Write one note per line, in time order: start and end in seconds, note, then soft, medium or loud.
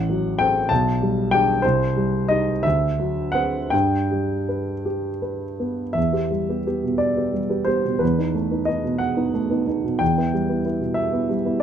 0.00 0.68 A1 medium
0.00 0.39 F#5 medium
0.10 0.58 F#3 soft
0.39 0.68 C4 soft
0.39 0.68 A4 soft
0.39 0.70 G5 medium
0.69 1.61 B1 medium
0.69 1.31 A5 medium
1.02 1.51 G3 soft
1.31 1.61 D4 soft
1.31 1.61 G4 soft
1.31 1.63 G5 medium
1.62 2.62 C2 medium
1.62 2.30 C5 medium
1.97 2.51 G3 soft
2.29 2.61 D#4 soft
2.29 2.61 G4 soft
2.29 2.64 D#5 medium
2.63 3.70 D2 soft
2.63 3.34 E5 medium
2.99 3.57 F#3 soft
3.32 3.69 C4 soft
3.32 3.69 B4 soft
3.32 3.71 F#5 medium
3.70 5.92 G2 soft
3.70 4.85 G5 medium
4.11 4.71 G3 soft
4.49 5.08 B4 soft
4.85 5.44 G4 soft
5.22 5.82 B4 soft
5.60 5.96 B3 soft
5.93 6.13 E2 soft
5.93 6.98 E5 medium
6.13 6.29 B3 soft
6.13 6.29 G4 soft
6.31 6.59 G3 soft
6.49 6.64 B3 soft
6.49 6.65 G4 soft
6.67 6.82 B3 soft
6.67 6.82 G4 soft
6.83 7.37 B2 soft
6.98 7.66 D5 medium
7.17 7.32 B3 soft
7.17 7.32 G4 soft
7.33 7.60 G3 soft
7.50 7.65 B3 soft
7.50 7.65 G4 soft
7.64 7.82 B3 soft
7.64 7.83 G4 soft
7.64 8.00 C5 medium
7.85 8.02 B2 soft
7.99 8.18 E2 soft
7.99 8.67 B4 medium
8.19 8.34 B3 soft
8.19 8.34 D#4 soft
8.34 8.62 A3 soft
8.51 8.66 B3 soft
8.51 8.66 D#4 soft
8.65 8.83 B3 soft
8.65 8.83 D#4 soft
8.65 9.00 D#5 medium
8.84 9.37 B2 soft
8.98 9.99 F#5 medium
9.17 9.32 B3 soft
9.17 9.32 D#4 soft
9.34 9.60 A3 soft
9.50 9.66 B3 soft
9.50 9.66 D#4 soft
9.67 9.82 B3 soft
9.67 9.82 D#4 soft
9.84 10.01 B2 soft
9.99 10.16 E2 soft
9.99 10.97 G5 medium
10.18 10.32 B3 soft
10.18 10.32 E4 soft
10.33 10.59 G3 soft
10.49 10.63 B3 soft
10.49 10.64 E4 soft
10.65 10.79 B3 soft
10.65 10.80 E4 soft
10.81 11.33 B2 soft
10.94 11.61 E5 medium
11.13 11.28 B3 soft
11.13 11.28 E4 soft
11.29 11.56 G3 soft
11.45 11.60 B3 soft
11.45 11.61 E4 soft